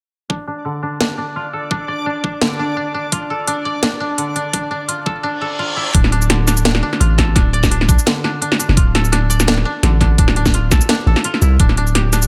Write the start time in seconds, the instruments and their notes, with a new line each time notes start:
0.30 koto D4, synth texture D4 D5, kick
0.47 koto D4
0.65 koto D3
0.83 koto D4
1.00 koto D4, snare
1.18 koto D4
1.36 koto F4
1.53 koto A4
1.71 koto D4, kick
1.88 koto D5
2.06 koto D4
2.23 koto D4, kick
2.41 koto D3, snare
2.59 koto D4
2.77 koto D4
2.94 koto D4
3.12 koto F4, kick, closed hi-hat
3.30 koto A4
3.47 koto D4, closed hi-hat
3.65 koto D5
3.83 koto D4, snare, closed hi-hat
4.00 koto D4
4.18 koto D3, closed hi-hat
4.36 koto D4, closed hi-hat
4.53 koto D4, kick, closed hi-hat
4.71 koto D4
4.88 koto F4, closed hi-hat
5.06 koto A4, kick
5.23 koto D4, reverse cymbal
5.41 koto A4
5.59 koto F4
5.76 koto E4
5.94 808-style bass D1, koto D4, kick, closed hi-hat
6.04 snare
6.12 koto D4, closed hi-hat
6.22 shaker
6.30 koto D3, snare, closed hi-hat
6.47 koto D4, snare, closed hi-hat, shaker
6.57 shaker
6.65 koto D4, snare, closed hi-hat
6.75 snare
6.83 koto D4
6.93 snare
7.00 808-style bass A1, koto F4, closed hi-hat
7.18 koto A4, kick, snare, closed hi-hat
7.35 808-style bass D1, koto D4, kick, snare, closed hi-hat
7.53 koto D5, closed hi-hat
7.63 kick, snare, shaker
7.71 koto D4, closed hi-hat
7.81 snare
7.88 808-style bass C2, koto D4, kick, closed hi-hat, shaker
7.99 shaker
8.06 koto D3, snare, closed hi-hat
8.24 koto D4, snare
8.42 koto D4, closed hi-hat
8.52 snare
8.59 koto D4, closed hi-hat, shaker
8.69 808-style bass F1, snare
8.77 808-style bass D1, koto F4, kick, closed hi-hat
8.95 koto A4, snare, closed hi-hat
9.05 shaker
9.12 koto D4, snare, closed hi-hat
9.30 koto D5, closed hi-hat, shaker
9.40 snare, shaker
9.47 koto D4, snare, closed hi-hat
9.57 snare
9.65 koto D4
9.83 808-style bass A1, koto D3, snare, closed hi-hat
10.01 koto D4, kick, snare, closed hi-hat
10.18 808-style bass D1, koto D4, kick, closed hi-hat
10.28 snare
10.36 koto D4, closed hi-hat
10.46 kick, snare, shaker
10.54 koto F4, closed hi-hat
10.71 808-style bass C2, koto A4, kick, snare, closed hi-hat, shaker
10.81 shaker
10.89 koto D4, snare, closed hi-hat
11.06 808-style bass A1, koto A4
11.16 snare
11.24 koto F4, closed hi-hat
11.34 snare
11.42 808-style bass C2, koto E4, closed hi-hat, shaker
11.60 808-style bass D1, koto D4, kick, closed hi-hat
11.69 snare
11.77 koto D4, closed hi-hat
11.87 shaker
11.95 koto G4, snare, closed hi-hat
12.13 koto D4, snare, closed hi-hat, shaker
12.22 shaker